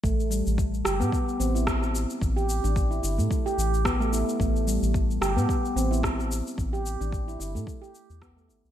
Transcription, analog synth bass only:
X:1
M:4/4
L:1/16
Q:"Swing 16ths" 1/4=110
K:Gmix
V:1 name="Analog synth bass" clef=bass
A,,,3 A,,,3 G,,, A,, z2 A,,,4- A,,, z | A,,,3 A,,,3 G,,, A,, z2 A,,,4- A,,, z | A,,,3 A,,,3 G,,, A,, z2 A,,,4- A,,, z | A,,,3 A,,,3 G,,, A,, z3 E,,3 G,,, C,, |]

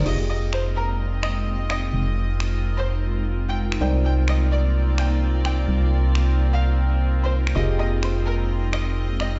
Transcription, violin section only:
X:1
M:4/4
L:1/16
Q:"Swing 16ths" 1/4=128
K:Fm
V:1 name="Violin section"
e z e z c z B2 z2 e2 z2 e z | z6 z c2 z4 g z2 | g z g z e z =d2 z2 g2 z2 g z | z6 z f2 z4 c z2 |
e z e z c z B2 z2 e2 z2 e z |]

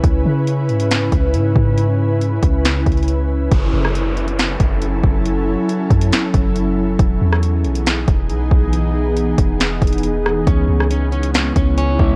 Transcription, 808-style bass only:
X:1
M:4/4
L:1/16
Q:1/4=138
K:F#dor
V:1 name="808-style bass" clef=bass
C,,2 C,4 G,,4 C,,2 G,,2 G,,2- | G,,6 C,,4 C,,6 | F,,,2 F,,,8 F,,,4 F,,,2- | F,,,3 z3 F,,2 z2 F,,,6 |
E,,,2 E,,4 B,,,4 E,,,2 B,,,2 B,,,2- | B,,,6 E,,,4 E,,,6 | C,,2 C,,8 C,,4 C,,2 |]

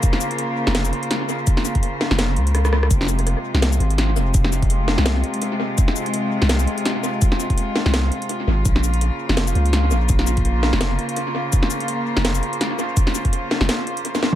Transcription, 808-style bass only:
X:1
M:4/4
L:1/16
Q:"Swing 16ths" 1/4=167
K:Bbdor
V:1 name="808-style bass" clef=bass
z6 z F,,,3 z6 | z6 z F,,,3 D,,6 | F,,,4- F,,, z2 C,,3 A,,,4 F,,,2- | F,,,6- F,,, C,,3 z6 |
z6 z C,,3 z6 | z6 z C,,3 z4 A,,,2 | B,,,4- B,,, z2 F,,,3 D,,4 B,,,2- | B,,,6- B,,, F,,,3 z6 |
z6 z F,,,3 z6 | z6 z F,,, z8 |]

